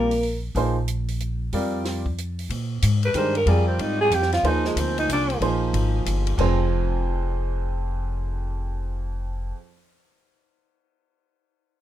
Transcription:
Already playing: upright bass A#1, trombone A#3, alto saxophone A#4
0.11 open hi-hat
0.23 open hi-hat
0.55 upright bass A#1, grand piano F3 A#3 D#4 G#4 C5, open hi-hat
0.88 closed hi-hat
1.08 open hi-hat
1.20 closed hi-hat
1.52 upright bass F2, grand piano G3 C4 F4 A#4 D5, open hi-hat
1.85 snare, open hi-hat
2.06 kick
2.18 closed hi-hat
2.39 open hi-hat
2.49 upright bass A#2, ride
2.82 upright bass G#2, hi-hat pedal, ride
3.03 alto saxophone B4, ride
3.14 upright bass G2, grand piano D#3 G#3 D4 G4 A#4, alto saxophone C5, hi-hat pedal, ride
3.35 alto saxophone A#4, ride
3.46 upright bass F2, grand piano G3 C4 F4 A#4 D5, alto saxophone G#4, ride
3.67 alto saxophone C4
3.79 upright bass G#2, alto saxophone D#4, ride
4.01 alto saxophone G#4
4.10 upright bass F2, hi-hat pedal, ride
4.15 alto saxophone G4
4.22 snare
4.32 alto saxophone F4, snare, ride
4.43 upright bass D#2, grand piano F3 A#3 D#4 G#4 C5, alto saxophone D#4, ride
4.65 alto saxophone G#3, snare
4.76 upright bass D2, alto saxophone C4, hi-hat pedal, ride
4.98 alto saxophone D#4, ride
5.08 upright bass C2, hi-hat pedal, ride
5.12 alto saxophone D4
5.30 ride
5.40 upright bass A#1, grand piano F3 A#3 D#4 G#4 C5, ride
5.73 upright bass G#1, ride
6.06 upright bass G1, hi-hat pedal, ride
6.27 ride
6.38 upright bass F1, grand piano F2 F3 C4 G#4 C5, kick, crash

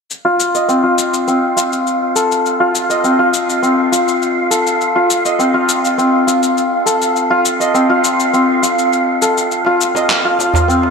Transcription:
0.10 synth texture F5, shaker
0.25 santur F4
0.40 shaker
0.55 santur D#5, shaker
0.68 santur C4, shaker
0.83 santur F4
0.98 shaker
1.14 shaker
1.27 santur C4, shaker
1.56 santur F4, shaker
1.72 shaker
1.87 shaker
2.16 santur A4, shaker
2.31 shaker
2.46 shaker
2.60 santur F4
2.75 shaker
2.90 santur D#5, shaker
3.04 santur C4, shaker
3.19 santur F4
3.34 shaker
3.49 shaker
3.62 santur C4, shaker
3.92 santur F4, shaker
4.08 shaker
4.22 shaker
4.51 santur A4, shaker
4.67 shaker
4.81 shaker
4.96 santur F4
5.10 shaker
5.25 santur D#5, shaker
5.39 santur C4, shaker
5.54 santur F4
5.69 shaker
5.85 shaker
5.98 santur C4, shaker
6.27 santur F4, shaker
6.43 shaker
6.57 shaker
6.86 santur A4, shaker
7.02 shaker
7.16 shaker
7.30 santur F4
7.45 shaker
7.60 santur D#5, shaker
7.74 santur C4, shaker
7.90 santur F4
8.04 shaker
8.20 shaker
8.33 santur C4, shaker
8.63 santur F4, shaker
8.78 shaker
8.93 shaker
9.22 santur A4, shaker
9.37 shaker
9.51 shaker
9.65 santur F4, darbuka tek
9.81 shaker
9.95 santur D#5, darbuka tek, shaker
10.10 santur F5, clap, darbuka ka, shaker
10.25 santur F4
10.39 darbuka ka, shaker
10.54 darbuka ka, darbuka tek, darbuka dum, shaker
10.68 santur C4, shaker
10.83 darbuka ka

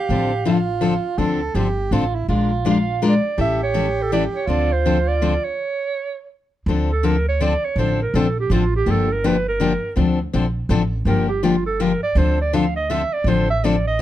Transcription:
Already playing: soprano saxophone G4
0.00 clarinet F5
0.09 upright bass A1, steel-string acoustic guitar D3 F3 C4 D4 A4
0.45 steel-string acoustic guitar D3 F3 C4 D4 A4, soprano saxophone F4
0.81 steel-string acoustic guitar D3 F3 C4 D4 A4
1.18 upright bass D2, steel-string acoustic guitar D3 F3 C4 D4 A4, soprano saxophone A4
1.55 upright bass G1, steel-string acoustic guitar D3 F3 C4 D4 A4, soprano saxophone G4
1.91 upright bass A1, steel-string acoustic guitar D3 F3 C4 D4 A4, soprano saxophone F4
2.15 soprano saxophone E4
2.28 upright bass A#1, steel-string acoustic guitar F3 G#3 D4 F4 A#4, soprano saxophone F4
2.65 steel-string acoustic guitar F3 G#3 D4 F4 A#4
2.70 clarinet F5
3.02 steel-string acoustic guitar F3 G#3 D4 F4 A#4
3.06 clarinet D5
3.38 upright bass A1, steel-string acoustic guitar E3 G3 C#4 E4 A4, soprano saxophone G4, clarinet E5
3.63 clarinet C#5
3.74 steel-string acoustic guitar E3 G3 C#4 E4 A4
4.02 clarinet A4
4.12 steel-string acoustic guitar E3 G3 C#4 E4 A4, clarinet D5
4.35 clarinet C#5
4.47 upright bass D2, steel-string acoustic guitar D3 F3 C4 D4 A4, soprano saxophone F4, clarinet D5
4.72 clarinet C5
4.85 steel-string acoustic guitar D3 F3 C4 D4 A4
5.08 clarinet D5
5.22 steel-string acoustic guitar D3 F3 C4 D4 A4
5.44 clarinet C#5
6.66 upright bass D2, steel-string acoustic guitar D3 F3 C4 D4 A4
6.92 clarinet A4
7.03 steel-string acoustic guitar D3 F3 C4 D4 A4, clarinet A#4
7.29 clarinet C#5
7.40 steel-string acoustic guitar D3 F3 C4 D4 A4, clarinet D5
7.65 clarinet C#5
7.76 upright bass A1, steel-string acoustic guitar D3 F3 C4 D4 A4, clarinet C5
8.02 clarinet A#4
8.14 upright bass A#1, steel-string acoustic guitar D3 F3 C4 D4 A4, clarinet A4
8.40 clarinet G4
8.50 upright bass A1, steel-string acoustic guitar D3 F3 C4 D4 A4, clarinet F4
8.76 clarinet G4
8.86 upright bass G1, steel-string acoustic guitar D3 F3 A#3 D4 G4
8.90 clarinet A4
9.13 clarinet A#4
9.24 steel-string acoustic guitar D3 F3 A#3 D4 G4, clarinet B4
9.48 clarinet A#4
9.60 steel-string acoustic guitar D3 F3 A#3 D4 G4
9.96 upright bass D2, steel-string acoustic guitar D3 F3 C4 D4 A4
10.33 upright bass A#1, steel-string acoustic guitar D3 F3 C4 D4 A4
10.69 upright bass A1, steel-string acoustic guitar D3 F3 C4 D4 A4
11.05 upright bass G1, steel-string acoustic guitar D3 F3 A#3 D4 G4, clarinet A#4
11.29 clarinet G4
11.43 steel-string acoustic guitar D3 F3 A#3 D4 G4, clarinet F4
11.66 clarinet A4
11.80 steel-string acoustic guitar D3 F3 A#3 D4 G4, clarinet A#4
12.03 clarinet D5
12.15 upright bass D2, steel-string acoustic guitar D3 F3 C4 D4 A4, clarinet C5
12.41 clarinet D5
12.53 steel-string acoustic guitar D3 F3 C4 D4 A4, clarinet F5
12.76 clarinet D#5
12.90 steel-string acoustic guitar D3 F3 C4 D4 A4, clarinet E5
13.13 clarinet D5
13.24 upright bass A1, steel-string acoustic guitar D3 F3 C4 D4 A4
13.28 clarinet C5
13.50 clarinet E5
13.64 steel-string acoustic guitar D3 F3 C4 D4 A4, clarinet D5
13.87 clarinet D#5

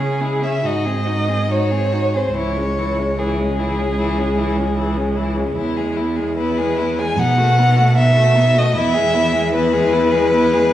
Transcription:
Already playing: cello C#3, violin G#4
0.00 viola C#4, violin G#4
0.21 viola G#3, violin E4
0.42 viola C#4, violin G#4 E5
0.64 cello G#2, viola D#4, violin F#4 D#5
0.85 viola C4, violin G#4
1.06 viola D#4, violin F#4
1.28 viola C4, violin G#4
1.50 viola D#4, violin F#4 C#5
1.70 viola C4, violin G#4
1.92 viola D#4, violin F#4
2.14 viola C4, violin G#4 C5
2.35 cello C#2, viola E3, violin E4 C#5
2.56 viola G#3, violin C#4
2.78 viola E3, violin E4
2.98 viola G#3, violin C#4
3.17 viola E3, violin E4 G#4
3.39 viola G#3, violin C#4
3.59 viola E3, violin E4
3.79 viola G#3, violin C#4
3.98 viola E3, violin E4
4.18 viola G#3, violin C#4
4.38 viola E3, violin E4
4.57 viola G#3, violin C#4
4.77 viola E3, violin E4
4.97 viola G#3, violin C#4
5.16 viola E3, violin E4
5.36 viola G#3, violin C#4
5.57 cello E2, viola B3, violin E4
5.77 viola G#3, violin G#4
5.97 viola B3, violin E4
6.16 viola G#3, violin G#4
6.37 viola B3, violin E4 B4
6.58 viola G#3, violin G#4
6.77 viola B3, violin E4
6.99 viola G#3, violin G#4 G#5
7.18 cello B2, viola B3, violin D#4 F#5
7.38 viola A3, violin F#4
7.58 viola B3, violin D#4
7.76 viola A3, violin F#4
7.96 viola B3, violin D#4 E5
8.15 viola A3, violin F#4
8.35 viola B3, violin D#4
8.54 viola A3, violin F#4 D#5
8.75 cello E2, viola B3, violin E4 E5
8.94 viola G#3, violin G#4
9.14 viola B3, violin E4
9.33 viola G#3, violin G#4
9.54 viola B3, violin E4 B4
9.73 viola G#3, violin G#4
9.93 viola B3, violin E4
10.12 viola G#3, violin G#4
10.32 viola B3, violin E4
10.53 viola G#3, violin G#4

